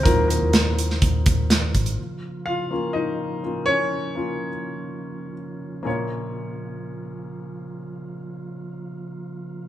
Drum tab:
HH |x-x-x-x-x-x-x-xx|----------------|----------------|----------------|
SD |----o--o----o---|----------------|----------------|----------------|
BD |o-------o-o---o-|----------------|----------------|----------------|

HH |----------------|
SD |----------------|
BD |----------------|